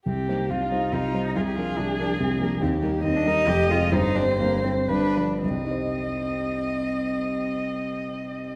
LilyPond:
<<
  \new Staff \with { instrumentName = "Violin" } { \time 3/4 \key c \minor \tempo 4 = 133 g'4 f'4 ees'4 | aes'2. | g'4 ees''2 | c''2 b'8 r8 |
ees''2.~ | ees''2. | }
  \new Staff \with { instrumentName = "Cello" } { \time 3/4 \key c \minor c'8 bes8 c'16 d'16 ees'8 f'8. ees'16 | f'16 g'16 f'8 d'8 d'8 c'8 bes8 | c'8 bes8 c'16 d'16 ees'8 g'8 f'8 | ees'8 d'16 c'16 bes8 c'8 d'4 |
c'2.~ | c'2. | }
  \new Staff \with { instrumentName = "Grand piano" } { \clef bass \time 3/4 \key c \minor <c, c>8 <g ees' c''>8 <c, c>8 <g ees' c''>8 <c, c>8 <g ees' c''>8 | <c, c>8 <f d' bes'>8 <c, c>8 <f d' bes'>8 <c, c>8 <f d' bes'>8 | <ees, ees>8 <g ees' bes'>8 <ees, ees>8 <g ees' bes'>8 <f,, f,>8 <aes c' aes'>8 | <g,, g,>8 <g c' c''>8 <g,, g,>8 <g c' c''>8 <g,, g,>8 <f d' b'>8 |
<c, c g ees' c'' ees''>2.~ | <c, c g ees' c'' ees''>2. | }
>>